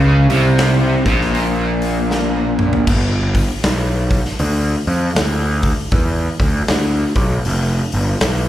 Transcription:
Already playing: C#2 C#3
0.29 C2 C3, open hi-hat
0.58 snare, open hi-hat
1.06 A#1 A#2, kick, open hi-hat
1.21 snare
1.35 open hi-hat
1.82 open hi-hat
2.11 snare
2.59 mid tom
2.73 floor tom
2.87 G1, kick, crash
3.35 kick, open hi-hat
3.63 B1, snare, open hi-hat
4.10 kick, open hi-hat
4.25 snare
4.39 D2, open hi-hat
4.87 F2, open hi-hat
5.15 D2, snare, open hi-hat
5.62 kick, open hi-hat
5.91 E2, kick, open hi-hat
6.40 D2, kick, open hi-hat
6.68 D2, snare, open hi-hat
7.15 B1, kick, open hi-hat
7.45 F1, open hi-hat
7.92 G1, open hi-hat
8.21 B1, snare, open hi-hat

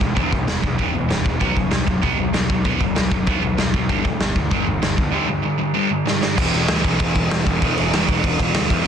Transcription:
0.01 E1 E2 B2, kick, floor tom
0.15 E1 E2 B2 E3, kick, floor tom
0.32 B1 E2 B2, kick, floor tom
0.47 E1 E2 B2, snare, floor tom
0.62 B1 E2 B2, kick, floor tom
0.78 E1 E2 B2 E3, kick, floor tom
0.94 E1 E2 B2, floor tom
1.09 E1 E2 B2, snare, floor tom
1.24 E1 E2 B2, kick, floor tom
1.40 B1 B2 F#3 B3, kick, floor tom
1.55 F#1 B2 F#3, kick, floor tom
1.71 B1 B2 F#3, snare, floor tom
1.87 F#1 B2 F#3, kick, floor tom
2.02 B1 B2 F#3 B3, kick, floor tom
2.18 B1 B2 F#3, floor tom
2.33 B1 B2 F#3, snare, floor tom
2.49 B1 B2 F#3, kick, floor tom
2.64 B1 B2 F#3 B3, kick, floor tom
2.79 F#1 B2 F#3, kick, floor tom
2.95 B1 B2 F#3, snare, floor tom
3.11 F#1 B2 F#3, kick, floor tom
3.27 B1 B2 F#3 B3, kick, floor tom
3.42 B1 B2 F#3, floor tom
3.57 B1 B2 F#3, snare, floor tom
3.74 B1 B2 F#3, kick, floor tom
3.89 G1 G2 D3 G3, kick, floor tom
4.05 D2 G2 D3, kick, floor tom
4.20 G1 G2 D3, snare, floor tom
4.35 D2 G2 D3, kick, floor tom
4.50 G1 G2 D3 G3, kick, floor tom
4.66 G1 G2 D3, floor tom
4.82 G1 G2 D3, snare, floor tom
4.97 G1 G2 D3, kick, floor tom
5.12 G2 D3 G3
5.28 G2 D3
5.43 G2 D3
5.58 G2 D3
5.74 G2 D3 G3
5.90 G2 D3
6.05 G2 D3, snare
6.21 G2 D3, snare
6.36 E1 E2 B2 E3, kick, crash
6.53 E1, crash
6.68 D2, snare, crash
6.84 B1, kick, crash
7.00 E1, kick, crash
7.15 E1, kick, crash
7.31 E1, snare, crash
7.46 E1, kick, crash
7.60 E2 B2 E3, kick, crash
7.77 E1, crash
7.93 E1, snare, crash
8.09 E1, kick, crash
8.24 E1, kick, crash
8.40 E1, kick, crash
8.54 D2, snare, crash
8.70 E2, kick, crash
8.84 E2

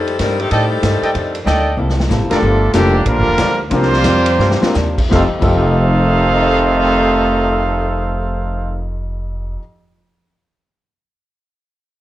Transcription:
Already playing: F2 G3 C4 D4 D#4 A4
0.07 ride
0.18 F2 G2 D#3 G3 A3 C4 D4 D#4 A#4, kick, snare, hi-hat pedal, ride
0.39 D#3 A3 C4 G4, ride
0.49 F2 A2 D#3 G3 A3 C4 D4 D#4 A4 D5 D#5 G5, kick, ride
0.82 F2 G2 D#3 A3 D4, kick, snare, hi-hat pedal, ride
1.02 A4 D5 D#5 G5, muted upright bass stroke, ride
1.13 F2 D#3 A3 D4, kick, ride
1.35 ride
1.44 D2 F2 D#3 A3 D4 A4 D5 D#5 G5, kick, snare, hi-hat pedal
1.77 C2 C3 A#3 E4 A4
1.89 snare
2.00 snare
2.09 A1 C3 A#3 E4 A4, snare, hi-hat pedal
2.20 G1
2.30 E1 D3 F3 G3 A3 A#3 D4 F4 G4 A4 A#4 D5 F5 A#5, snare, ride
2.42 G1 G2 F3 A#3 D4
2.73 F1 G2 A#2 D3 F3 G3 A#3 D4 F4 G4 A4, kick, snare, hi-hat pedal, ride
3.06 A#1 G2 D3 F3 G3 A#3 D4 F4 A#4, kick, ride
3.17 G1
3.28 F1
3.38 D2 G2 F3 A#3 D4, kick, snare, hi-hat pedal, ride
3.70 C2 C3 F3 G3 A#3 C4 D4 F4 G4 A#4 C5, kick, ride
3.82 snare
3.93 snare
4.04 F2 C3 F3 A#3 D4, kick, snare, hi-hat pedal, ride
4.26 ride
4.39 G2 C3 F3 A#3 D4, snare
4.51 snare
4.62 C4 D4 F4 G4 A#4, muted upright bass stroke, snare
4.74 D#2 C3 F3 A#3 D4, snare, hi-hat pedal
4.98 kick, crash
5.09 F1 F2 C3 D#3 F3 A3 D#4 G4 A4 C5 F5, kick, snare
5.14 D#4 G4
5.39 F1 F2 C3 D#3 F3 A3 D#4 G4 A4 C5 F5, kick, crash
5.45 D#4 G4

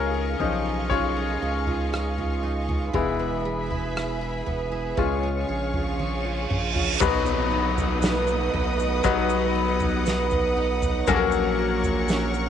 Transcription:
Already playing: C#2 C#3 C#4 D#4 F4 G#4 A#4 D#5 F5 C#6
0.14 F4
0.40 B1 F3 C#4 D#4, floor tom
0.66 F4
0.89 C#3 F4 G#4 C#5, kick
1.17 D#4
1.42 C#2 G#4
1.67 F4, floor tom
1.93 G#4, cross-stick
2.18 F4, floor tom
2.43 D#4
2.69 F4, floor tom
2.93 E1 E3 G#3 B3 E4 G#4 B4 E5 B5, kick, floor tom
3.19 B3
3.45 G#4
3.71 E4, floor tom
3.96 G#4, cross-stick
4.21 E4
4.46 E1 B3, floor tom
4.72 E4
4.97 C#2 C#3 G#3 C#4 F4 G#4 C#5 F5 C#6, kick, reverse cymbal
5.23 C#4
5.49 A#1 G#4
5.74 F4, floor tom
5.99 G#4, high tom
6.25 F4
6.50 A#1 C#4, mid tom
6.75 F4, floor tom
7.00 B1 B2 F#3 B3 D#4 F#4 B4 D#5 F#5 D#6, kick, floor tom, crash, downlifter, shaker
7.26 shaker
7.51 D#4
7.78 floor tom, shaker
8.02 B3, snare, shaker
8.27 shaker
8.53 B1 B4, floor tom
8.80 shaker
9.04 B1 F#3 B3 D#4 F#4 B4, kick, shaker
9.29 shaker
9.55 D#4
9.80 floor tom, shaker
10.06 B3, snare, shaker
10.30 floor tom, shaker
10.57 D#4
10.82 floor tom, shaker
11.07 A#1 A#2 F#3 A#3 C#4 F#4 A4 A#4 C#5 C#6, kick, floor tom, shaker
11.16 A#4
11.32 shaker
11.59 F#4
11.84 floor tom, shaker
12.08 C#4, snare, shaker
12.34 shaker

